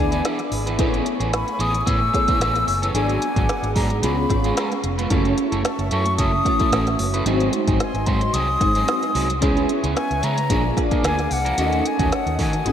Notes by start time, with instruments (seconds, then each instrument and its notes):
Already playing: fingered electric bass D2, fm electric piano B3 D4 E4 G#4 D5, analog synth pad G#4 E5 B5 D6, flute G#5
0.12 clean electric guitar E3 B3 D4 G#4, closed hi-hat
0.25 clean electric guitar E3 B3 D4 G#4, snare, closed hi-hat
0.39 muted clean electric guitar stroke, snare, closed hi-hat
0.51 fingered electric bass G#1, muted clean electric guitar stroke, open hi-hat
0.66 clean electric guitar E3 B3 D4 B4, closed hi-hat
0.78 fingered electric bass A1, clean electric guitar E3 B3 C#4 G#4, analog synth pad A3 G#5 C#6, fm electric piano B3 E4 G#4 A4 B4, kick, closed hi-hat
0.86 fm electric piano C#5
0.94 closed hi-hat
1.06 muted clean electric guitar stroke, closed hi-hat
1.20 fingered electric bass A1, clean electric guitar E3 B3 C#4 G#4, closed hi-hat
1.33 flute B5, snare, closed hi-hat
1.47 muted clean electric guitar stroke, closed hi-hat
1.59 fingered electric bass A1, clean electric guitar E3 B3 C#4 G#4, flute D#6, closed hi-hat
1.74 muted clean electric guitar stroke, closed hi-hat
1.81 flute D#6
1.86 fingered electric bass A2, clean electric guitar E3 B3 C#4 G#4, flute E6, kick, closed hi-hat
2.01 muted clean electric guitar stroke
2.13 fm electric piano B3 E4 G#4 A4 C#5, muted clean electric guitar stroke, kick, snare, closed hi-hat
2.28 clean electric guitar E3 B3 C#4 G#4, kick, closed hi-hat
2.40 fingered electric bass A1, clean electric guitar E3 B3 C#4 G#4, snare, closed hi-hat
2.55 muted clean electric guitar stroke, snare, closed hi-hat
2.68 fingered electric bass F#1, muted clean electric guitar stroke, open hi-hat
2.82 clean electric guitar E3 B3 C#4 A4, closed hi-hat
2.94 fingered electric bass G#1, clean electric guitar F#3 B3 D4 G#4, fm electric piano B3 D4 F#4 G#4 D5, analog synth pad G#4 F#5 D6, flute G#5, closed hi-hat
3.09 closed hi-hat
3.22 muted clean electric guitar stroke, closed hi-hat
3.36 fingered electric bass G#1, clean electric guitar F#3 B3 D4 G#4, kick, closed hi-hat
3.49 muted clean electric guitar stroke, snare, closed hi-hat
3.63 fingered electric bass G#1, muted clean electric guitar stroke, closed hi-hat
3.75 fingered electric bass G#2, clean electric guitar F#3 B3 D4 G#4, flute A#5, kick, open hi-hat
3.90 muted clean electric guitar stroke, closed hi-hat
4.02 fingered electric bass C#2, clean electric guitar G#3 B3 F4 G#4, fm electric piano B3 C#4 F4 G#4 C#5, analog synth pad F5 C#6, flute B5, closed hi-hat
4.18 muted clean electric guitar stroke
4.29 fingered electric bass G#1, fm electric piano B3 C#4 F4 G#4 C#5, muted clean electric guitar stroke, kick, snare, closed hi-hat
4.44 clean electric guitar G#3 B3 F4 G#4, closed hi-hat
4.57 clean electric guitar G#3 B3 F4 G#4, snare, closed hi-hat
4.72 muted clean electric guitar stroke, snare, closed hi-hat
4.84 fingered electric bass F1, muted clean electric guitar stroke, closed hi-hat
4.98 clean electric guitar G#3 B3 F4 B4, closed hi-hat
5.10 fingered electric bass F#1, fm electric piano A3 C#4 E4 F#4 C#5, clean electric guitar A3 C#4 E4 A4, analog synth pad F#4 E5 A5 C#6, kick, closed hi-hat
5.25 closed hi-hat
5.38 muted clean electric guitar stroke, closed hi-hat
5.52 fingered electric bass F#1, clean electric guitar A3 C#4 E4 A4, closed hi-hat
5.64 flute A5, muted clean electric guitar stroke, snare, closed hi-hat
5.79 fingered electric bass F#1, muted clean electric guitar stroke, closed hi-hat
5.91 fingered electric bass F#2, clean electric guitar A3 C#4 E4 A4, flute C#6, closed hi-hat
6.06 muted clean electric guitar stroke, closed hi-hat
6.18 fingered electric bass F#1, clean electric guitar A3 C#4 E4 A4, flute D#6, kick, closed hi-hat
6.33 muted clean electric guitar stroke
6.45 fm electric piano A3 C#4 E4 F#4 C#5, muted clean electric guitar stroke, kick, snare, closed hi-hat
6.60 clean electric guitar A3 C#4 E4 A4, kick, closed hi-hat
6.72 fingered electric bass A1, clean electric guitar A3 C#4 E4 A4, snare, closed hi-hat
6.87 muted clean electric guitar stroke, snare, closed hi-hat
6.99 fingered electric bass F#1, muted clean electric guitar stroke, open hi-hat
7.14 clean electric guitar A3 C#4 E4 B4, closed hi-hat
7.26 fingered electric bass G#1, clean electric guitar F#3 C4 D#4 G#4, fm electric piano G#3 C4 D#4 F#4 C5, analog synth pad D#5 G#5 C6, closed hi-hat
7.40 closed hi-hat
7.53 muted clean electric guitar stroke, closed hi-hat
7.67 fingered electric bass G#1, clean electric guitar F#3 C4 D#4 G#4, kick, closed hi-hat
7.80 flute G#5, muted clean electric guitar stroke, snare, closed hi-hat
7.94 fingered electric bass G#1, muted clean electric guitar stroke, closed hi-hat
8.06 fingered electric bass G#2, clean electric guitar F#3 C4 D#4 G#4, flute C6, kick, closed hi-hat
8.21 muted clean electric guitar stroke, closed hi-hat
8.33 fingered electric bass C2, clean electric guitar F#3 C4 D#4 G#4, flute D#6, closed hi-hat
8.49 muted clean electric guitar stroke
8.60 fingered electric bass G#1, fm electric piano G#3 C4 D#4 F#4 C5, muted clean electric guitar stroke, kick, snare, closed hi-hat
8.75 clean electric guitar F#3 C4 D#4 G#4, closed hi-hat
8.88 muted clean electric guitar stroke, snare, closed hi-hat
9.03 muted clean electric guitar stroke, snare, closed hi-hat
9.15 fingered electric bass C2, clean electric guitar F#3 C4 D#4 G#4, open hi-hat
9.30 muted clean electric guitar stroke, closed hi-hat
9.41 fingered electric bass C#2, clean electric guitar G#3 B3 E4 G#4, fm electric piano B3 C#4 E4 G#4 C#5, analog synth pad B4 E5 C#6, kick, closed hi-hat
9.57 closed hi-hat
9.69 muted clean electric guitar stroke, closed hi-hat
9.83 fingered electric bass C#2, clean electric guitar G#3 B3 E4 G#4, closed hi-hat
9.96 flute G#5, muted clean electric guitar stroke, snare, closed hi-hat
10.11 fingered electric bass C#2, muted clean electric guitar stroke, closed hi-hat
10.23 fingered electric bass C#3, clean electric guitar G#3 B3 E4 G#4, flute A#5, closed hi-hat
10.38 muted clean electric guitar stroke, closed hi-hat
10.49 fingered electric bass A#1, clean electric guitar F3 A#3 D4 G#4, fm electric piano A#3 D4 F4 G#4 D5, analog synth pad A#4 F5 D6, kick, closed hi-hat
10.65 muted clean electric guitar stroke
10.76 fm electric piano A#3 D4 F4 G#4 D5, muted clean electric guitar stroke, kick, snare, closed hi-hat
10.91 clean electric guitar F3 A#3 D4 G#4, kick, closed hi-hat
11.03 fingered electric bass D2, clean electric guitar F3 A#3 D4 G#4, flute G#5, snare, closed hi-hat
11.18 muted clean electric guitar stroke, snare, closed hi-hat
11.30 fingered electric bass C2, flute F#5, muted clean electric guitar stroke, open hi-hat
11.45 clean electric guitar F3 A#3 D4 A#4, closed hi-hat
11.57 fingered electric bass D#2, clean electric guitar D#3 A3 C#4 F#4, fm electric piano C#4 D#4 F#4 A4 D#5, analog synth pad C#5 F#5 A5 D#6, closed hi-hat
11.73 closed hi-hat
11.84 flute G#5, muted clean electric guitar stroke, closed hi-hat
11.99 fingered electric bass D#2, clean electric guitar D#3 A3 C#4 F#4, kick, closed hi-hat
12.12 flute F#5, muted clean electric guitar stroke, snare, closed hi-hat
12.26 fingered electric bass D#2, muted clean electric guitar stroke, closed hi-hat
12.39 fingered electric bass D#3, clean electric guitar D#3 A3 C#4 F#4, flute G#5, kick, open hi-hat
12.53 muted clean electric guitar stroke, closed hi-hat
12.65 fingered electric bass G#1, fm electric piano C4 D#4 F#4 G#4 D#5, analog synth pad C5 G#5, muted clean electric guitar stroke, closed hi-hat, high tom